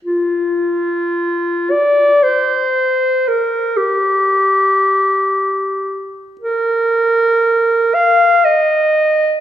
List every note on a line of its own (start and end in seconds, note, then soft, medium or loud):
0.05 1.72 F4 medium
1.71 2.24 D5 medium
2.23 3.30 C5 medium
3.28 3.78 A#4 medium
3.77 6.14 G4 medium
6.41 7.96 A#4 medium
7.94 8.46 F5 medium
8.45 9.40 D#5 medium